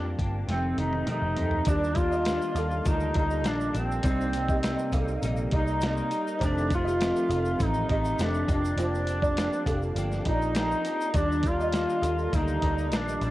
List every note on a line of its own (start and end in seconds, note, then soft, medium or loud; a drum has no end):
0.00 0.13 F2 medium
0.00 0.19 F3 medium
0.00 0.44 G3 medium
0.00 0.19 A#3 medium
0.00 0.45 C4 medium
0.00 0.16 D4 loud
0.00 0.20 D4 medium
0.00 0.46 D4 medium
0.00 0.47 F4 medium
0.00 0.18 G4 loud
0.19 0.43 G1 medium
0.19 0.48 A#3 soft
0.19 0.49 D4 medium
0.19 0.49 G4 medium
0.19 kick medium
0.19 closed hi-hat medium
0.46 0.72 F1 medium
0.46 0.78 F2 medium
0.46 0.78 D#3 medium
0.46 1.64 A3 medium
0.46 0.78 A3 medium
0.46 1.65 C4 medium
0.46 0.76 C4 medium
0.46 0.77 C4 loud
0.46 1.65 D#4 medium
0.46 snare medium
0.46 closed hi-hat medium
0.51 1.66 G4 medium
0.78 1.02 F1 medium
0.78 1.05 D#3 soft
0.78 1.06 A3 soft
0.78 1.06 C4 medium
0.78 1.06 D#4 medium
0.78 closed hi-hat medium
0.78 high tom medium
0.93 high tom medium
1.06 1.37 F2 medium
1.06 1.37 D#3 medium
1.06 1.37 A3 medium
1.06 1.35 C4 medium
1.06 1.71 D#4 loud
1.06 muted picked electric bass stroke soft
1.06 closed hi-hat medium
1.06 mid tom medium
1.22 1.34 F1 medium
1.36 1.61 F2 medium
1.36 1.65 D#3 soft
1.36 1.67 A3 medium
1.36 1.67 C4 medium
1.36 closed hi-hat medium
1.36 floor tom medium
1.51 floor tom medium
1.64 2.38 D#2 medium
1.64 1.96 D#3 medium
1.64 1.97 G3 medium
1.64 3.99 A#3 medium
1.64 1.97 A#3 medium
1.64 3.99 D4 medium
1.64 1.97 D4 loud
1.64 4.00 F4 medium
1.64 1.96 D5 loud
1.64 kick loud
1.64 closed hi-hat loud
1.64 shaker medium
1.68 1.98 D4 loud
1.68 1.96 G4 medium
1.68 4.01 G4 medium
1.84 shaker soft
1.95 2.27 D4 medium
1.95 2.86 F4 loud
1.95 kick loud
1.95 closed hi-hat medium
1.95 shaker soft
1.99 2.27 G3 soft
1.99 2.27 A#3 medium
2.11 2.40 G4 medium
2.11 2.40 D#5 medium
2.11 shaker soft
2.25 2.57 D#3 medium
2.25 2.57 G3 medium
2.25 2.57 A#3 medium
2.25 2.55 D4 medium
2.25 snare loud
2.25 closed hi-hat loud
2.25 shaker medium
2.42 shaker medium
2.55 2.79 D#2 loud
2.55 2.84 G3 medium
2.55 2.85 A#3 medium
2.55 2.86 D4 medium
2.55 2.71 A4 medium
2.55 2.70 F5 medium
2.55 closed hi-hat medium
2.55 shaker medium
2.71 shaker soft
2.85 3.10 D2 loud
2.85 3.15 D#3 medium
2.85 3.15 G3 medium
2.85 3.14 A#3 medium
2.85 3.12 D4 medium
2.85 3.15 D#4 loud
2.85 kick loud
2.85 closed hi-hat medium
2.85 shaker medium
3.00 shaker soft
3.14 3.45 D2 medium
3.14 3.44 G3 soft
3.14 3.44 A#3 medium
3.14 3.44 D4 medium
3.14 3.49 D#4 loud
3.14 3.30 G4 medium
3.14 3.30 D#5 medium
3.14 kick medium
3.14 closed hi-hat medium
3.30 shaker soft
3.44 3.69 A#1 loud
3.44 3.75 D#3 medium
3.44 3.75 G3 medium
3.44 3.74 A#3 medium
3.44 3.72 D4 medium
3.44 3.76 D4 loud
3.44 snare loud
3.44 closed hi-hat medium
3.44 shaker medium
3.60 shaker soft
3.73 3.98 A#1 loud
3.73 4.03 G3 soft
3.73 4.03 A#3 medium
3.73 4.04 D4 medium
3.73 closed hi-hat medium
3.73 shaker medium
3.78 5.23 C4 loud
3.91 shaker medium
4.01 4.74 C2 loud
4.01 4.34 C3 medium
4.01 4.34 G3 medium
4.01 6.35 A#3 medium
4.01 4.34 A#3 medium
4.01 6.37 D#4 medium
4.01 4.33 D#4 medium
4.01 4.32 C5 loud
4.01 6.36 D5 medium
4.01 kick loud
4.01 closed hi-hat loud
4.05 4.33 D#4 medium
4.05 6.38 G4 medium
4.05 shaker medium
4.21 shaker soft
4.33 4.63 G3 soft
4.33 4.63 A#3 medium
4.33 4.64 D#4 medium
4.33 closed hi-hat medium
4.33 shaker soft
4.48 4.78 G4 medium
4.48 4.77 D#5 medium
4.48 kick loud
4.48 shaker soft
4.63 4.93 C3 medium
4.63 4.93 G3 loud
4.63 4.92 A#3 loud
4.63 4.90 D#4 loud
4.63 snare loud
4.63 closed hi-hat loud
4.63 shaker medium
4.79 shaker soft
4.92 5.16 C2 loud
4.92 5.22 G3 medium
4.92 5.23 A#3 medium
4.92 5.22 D#4 medium
4.92 5.08 A4 medium
4.92 5.08 F5 medium
4.92 kick medium
4.92 closed hi-hat medium
4.92 shaker medium
5.08 shaker soft
5.22 5.46 A#1 medium
5.22 5.52 C3 medium
5.22 5.52 G3 medium
5.22 5.52 A#3 medium
5.22 5.51 D#4 medium
5.22 closed hi-hat medium
5.22 shaker medium
5.37 shaker soft
5.51 5.99 C2 loud
5.51 5.81 G3 soft
5.51 5.81 A#3 medium
5.51 5.81 D#4 medium
5.51 5.81 D#4 loud
5.51 5.67 G4 medium
5.51 5.66 D#5 medium
5.51 kick medium
5.51 closed hi-hat medium
5.67 shaker soft
5.81 6.11 C3 medium
5.81 6.11 G3 medium
5.81 6.11 A#3 medium
5.81 6.10 D#4 medium
5.81 snare loud
5.81 closed hi-hat medium
5.81 shaker medium
5.85 6.46 D#4 loud
5.97 shaker soft
6.11 6.42 G3 medium
6.11 6.42 A#3 medium
6.11 6.41 D#4 medium
6.11 closed hi-hat medium
6.11 shaker soft
6.27 shaker medium
6.38 7.11 F1 loud
6.38 6.71 F2 medium
6.38 6.71 D#3 medium
6.38 8.43 A3 medium
6.38 8.43 C4 medium
6.38 6.69 D#4 medium
6.38 8.44 D#4 medium
6.38 6.68 C5 loud
6.38 kick loud
6.38 closed hi-hat loud
6.43 6.71 A3 medium
6.43 6.70 C4 medium
6.43 6.72 D4 loud
6.43 8.45 G4 medium
6.43 shaker medium
6.58 shaker soft
6.70 7.00 D#3 medium
6.70 7.01 A3 soft
6.70 7.00 C4 medium
6.70 kick loud
6.70 closed hi-hat medium
6.70 shaker soft
6.75 7.66 F4 loud
6.84 7.13 G4 medium
6.84 7.13 D#5 medium
6.84 shaker soft
7.01 7.30 F2 medium
7.01 7.30 D#3 medium
7.01 7.29 A3 medium
7.01 7.28 C4 medium
7.01 snare loud
7.01 closed hi-hat loud
7.01 shaker medium
7.16 shaker medium
7.29 7.53 F1 loud
7.29 7.57 D#3 medium
7.29 7.58 A3 medium
7.29 7.59 C4 medium
7.29 7.44 A4 medium
7.29 7.43 F5 medium
7.29 closed hi-hat medium
7.29 shaker medium
7.45 shaker soft
7.57 7.83 A1 loud
7.57 7.88 F2 medium
7.57 7.88 D#3 medium
7.57 7.89 A3 medium
7.57 7.88 C4 medium
7.57 kick loud
7.57 closed hi-hat loud
7.57 shaker medium
7.64 8.25 D#4 loud
7.74 shaker soft
7.89 8.13 A1 loud
7.89 8.18 D#3 soft
7.89 8.19 A3 medium
7.89 8.19 C4 medium
7.89 8.04 G4 medium
7.89 8.03 D#5 medium
7.89 kick medium
7.89 closed hi-hat medium
8.05 shaker soft
8.19 8.42 F1 loud
8.19 8.48 F2 medium
8.19 8.48 D#3 medium
8.19 8.49 A3 medium
8.19 8.48 C4 medium
8.19 snare loud
8.19 closed hi-hat loud
8.19 shaker medium
8.24 8.51 D4 loud
8.34 shaker soft
8.47 8.72 F1 medium
8.47 8.77 A#3 medium
8.47 11.09 C4 medium
8.47 8.78 D4 medium
8.47 11.11 F4 medium
8.47 8.77 G4 medium
8.47 11.10 D5 medium
8.47 kick loud
8.47 closed hi-hat medium
8.47 shaker medium
8.51 8.77 D4 loud
8.51 11.12 G4 medium
8.65 shaker medium
8.77 9.47 F1 loud
8.77 9.07 F3 medium
8.77 9.07 A#3 medium
8.77 9.07 D4 medium
8.77 9.06 F4 medium
8.77 9.06 G4 medium
8.77 9.06 C5 loud
8.77 closed hi-hat loud
8.77 shaker medium
8.83 9.97 D4 loud
8.95 shaker soft
9.07 9.37 A#3 soft
9.07 9.37 D4 soft
9.07 9.37 G4 medium
9.07 closed hi-hat medium
9.07 shaker soft
9.22 9.50 F4 medium
9.22 9.50 D5 medium
9.22 kick loud
9.22 shaker soft
9.37 9.66 F3 medium
9.37 9.67 A#3 medium
9.37 9.66 D4 medium
9.37 9.65 G4 loud
9.37 snare loud
9.37 closed hi-hat loud
9.37 shaker medium
9.53 shaker medium
9.66 9.90 F1 loud
9.66 9.96 A#3 soft
9.66 9.96 D4 medium
9.66 9.96 G4 medium
9.66 9.80 A4 medium
9.66 9.80 F5 medium
9.66 kick medium
9.66 closed hi-hat medium
9.66 shaker medium
9.82 shaker soft
9.95 10.19 G1 loud
9.95 10.25 F3 medium
9.95 10.26 A#3 medium
9.95 10.25 D4 medium
9.95 10.24 G4 medium
9.95 closed hi-hat medium
9.95 shaker medium
10.12 snare soft
10.12 shaker soft
10.25 10.73 A#1 loud
10.25 10.53 A#3 soft
10.25 10.54 D4 medium
10.25 10.53 D#4 loud
10.25 10.40 F4 medium
10.25 10.55 G4 medium
10.25 10.40 D5 medium
10.25 kick medium
10.25 closed hi-hat medium
10.42 shaker soft
10.54 10.84 F3 medium
10.54 10.84 A#3 medium
10.54 10.84 D4 medium
10.54 11.17 D#4 loud
10.54 10.83 G4 medium
10.54 snare loud
10.54 closed hi-hat medium
10.54 shaker medium
10.71 shaker soft
10.84 11.14 A#3 soft
10.84 11.14 D4 medium
10.84 11.14 G4 medium
10.84 closed hi-hat medium
10.84 shaker medium
11.01 shaker medium
11.12 11.84 D#2 loud
11.12 11.44 D#3 medium
11.12 13.31 A#3 medium
11.12 11.49 D4 loud
11.12 13.31 F4 medium
11.12 13.31 D5 medium
11.12 11.43 D5 loud
11.12 kick loud
11.12 closed hi-hat loud
11.16 11.44 G3 medium
11.16 11.44 A#3 medium
11.16 11.44 D4 medium
11.16 11.43 G4 medium
11.16 13.31 G4 medium
11.16 shaker medium
11.32 shaker soft
11.43 11.73 A#3 soft
11.43 11.74 D4 medium
11.43 kick loud
11.43 closed hi-hat medium
11.43 shaker soft
11.47 11.72 G3 soft
11.47 12.37 F4 loud
11.60 11.88 G4 medium
11.60 11.87 D#5 medium
11.60 shaker soft
11.72 12.03 D#3 medium
11.72 12.03 G3 medium
11.72 12.03 A#3 medium
11.72 12.02 D4 medium
11.72 snare loud
11.72 closed hi-hat loud
11.72 shaker medium
11.89 shaker medium
12.02 12.26 D#2 loud
12.02 12.33 G3 soft
12.02 12.33 A#3 medium
12.02 12.32 D4 medium
12.02 12.17 A4 medium
12.02 12.16 F5 medium
12.02 closed hi-hat medium
12.02 shaker medium
12.18 shaker soft
12.33 12.56 D2 loud
12.33 12.62 D#3 medium
12.33 12.63 G3 medium
12.33 12.63 A#3 medium
12.33 12.62 D4 medium
12.33 12.97 D#4 loud
12.33 kick loud
12.33 closed hi-hat medium
12.33 shaker medium
12.48 shaker soft
12.62 12.92 D2 loud
12.62 12.92 G3 soft
12.62 12.92 A#3 medium
12.62 12.92 D4 medium
12.62 12.77 G4 medium
12.62 12.76 D#5 medium
12.62 kick medium
12.62 closed hi-hat medium
12.78 shaker soft
12.92 13.16 A#1 medium
12.92 13.21 D#3 medium
12.92 13.22 G3 medium
12.92 13.22 A#3 medium
12.92 13.20 D4 medium
12.92 13.23 D4 loud
12.92 snare loud
12.92 closed hi-hat medium
12.92 shaker medium
13.08 shaker medium
13.21 13.31 A#1 loud
13.21 13.31 G3 medium
13.21 13.31 A#3 medium
13.21 13.31 D4 medium
13.21 13.31 D4 loud
13.21 closed hi-hat medium
13.21 shaker medium